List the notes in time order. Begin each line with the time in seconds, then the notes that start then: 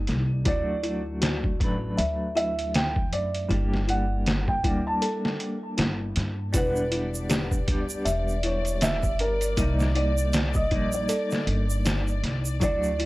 Already playing: G3 A#3 D#4 D5
0.07 C2, snare, closed hi-hat
0.45 D2 F#3 A3 D4 E4 D5, kick, closed hi-hat
0.51 F#4
0.83 E4, closed hi-hat
1.22 F#4, snare, closed hi-hat
1.44 kick
1.59 A1 F#3 A3 D4, kick, closed hi-hat
1.64 B4
1.98 D2 E5, closed hi-hat
2.35 E4 E5, closed hi-hat
2.59 closed hi-hat
2.74 G5, snare, closed hi-hat
2.96 kick
3.12 F#2 D5, closed hi-hat
3.35 closed hi-hat
3.48 G1 G3 A#3 D4 E4, kick, closed hi-hat
3.54 G4
3.74 snare
3.88 E4 F#5, closed hi-hat
4.26 snare, closed hi-hat
4.48 G5, kick
4.63 D2 G3 A#3 D4 E4, kick, closed hi-hat
4.87 A5
5.02 A4, closed hi-hat
5.25 snare
5.40 closed hi-hat
5.77 G1 E4, snare, closed hi-hat
6.16 G2, snare, closed hi-hat
6.53 E1 G3 B3 D4 E4 B4 D5, kick, closed hi-hat, shaker
6.58 F#5
6.76 shaker
6.91 E4, closed hi-hat
7.14 shaker
7.29 G4, snare, closed hi-hat, shaker
7.51 kick, shaker
7.66 D2 G3 B3 D4, kick, closed hi-hat
7.71 G4
7.89 shaker
8.05 E1 E5, closed hi-hat, shaker
8.28 shaker
8.43 E4 C#5, closed hi-hat
8.65 closed hi-hat, shaker
8.81 E5, snare, closed hi-hat, shaker
9.03 kick, shaker
9.19 G1 A#4, closed hi-hat
9.41 closed hi-hat, shaker
9.57 C2 G3 A#3 D#4 D5, kick, closed hi-hat, shaker
9.62 D#4
9.80 snare, shaker
9.95 D#4 D5, closed hi-hat
10.18 shaker
10.33 snare, closed hi-hat, shaker
10.54 D#5, kick, shaker
10.70 A#1 G3 A#3 D#4 D5, kick, closed hi-hat
10.76 D#4
10.92 D5, shaker
11.09 A4, closed hi-hat, shaker
11.31 snare, shaker
11.47 G1, closed hi-hat
11.70 shaker
11.85 D#4, snare, closed hi-hat, shaker
12.08 shaker
12.23 C2, snare, closed hi-hat
12.45 shaker
12.60 D2 F#3 A3 D4 E4 D5, kick, closed hi-hat, shaker
12.65 F#4
12.83 shaker
12.99 E4, closed hi-hat